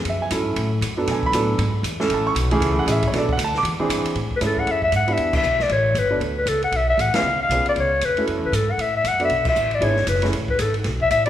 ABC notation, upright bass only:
X:1
M:4/4
L:1/8
Q:"Swing" 1/4=233
K:A
V:1 name="Upright bass" clef=bass
F,,2 G,,2 A,,2 F,,2 | B,,2 A,,2 G,,2 E,,2 | A,,,2 B,,,2 C,,2 A,,,2 | B,,,2 D,,2 E,, z =G,, z |
A,,2 G,,2 F,,2 G,,2 | E,,2 B,,,2 A,,,2 =G,,,2 | D,,2 C,,2 B,,,2 A,,, z | C,,2 B,,, z C,,2 ^E,,2 |
(3F,, E,, C,, G,,2 A,,2 F,,2 | B,,,2 A,,,2 G,,,2 F,,,2 | A,,,2 G,,,2 B,,,2 A,,,2 |]